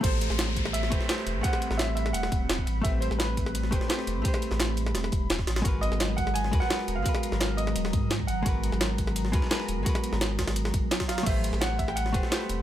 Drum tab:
CC |----------------|----------------|----------------|----------------|
RD |x-x-x-x-x-x-x-x-|xxx-x-x-x-x-x-x-|x-x-x-x-x-x-x-x-|xxx-x-x-x-x-x-xx|
HH |x-x-x-x-x-x-x-x-|x-x-x-x-x-x-x-x-|x-x-x-x-x-x-x-x-|x-x-x-x-x-x-x-x-|
SD |---oo--o-o-ooo--|-o-oo--o-o--o---|---oo--o-o-ooo--|-o-oo--ooo--oooo|
BD |o-----o---o-----|o---------o--o--|o-----o---o-----|o---------o--o--|

CC |----------------|----------------|----------------|----------------|
RD |x-x-x-x-x-x-x-x-|xxx-x-x-x-x-x-x-|x-x-x-x-x-x-x-x-|xxx-x-xxx-x-xxxx|
HH |x-x-x-x-x-x-x-x-|x-x-x-x-x-x-x-x-|x-x-x-x-x-x-x-x-|x-x-x-x-x-x-x-x-|
SD |---oo--o-o-ooo--|-o-oo--o-o--o---|---oo--o-o-ooo--|-o-oo-oo-o--oooo|
BD |o-----o---o-----|o---------o--o--|o-----o---o-----|o-----o---o--o--|

CC |x---------------|
RD |x-x-x-x-x-x-x-x-|
HH |x-x-x-x-x-x-x-x-|
SD |---oo--o-o-ooo--|
BD |o-----o---o-----|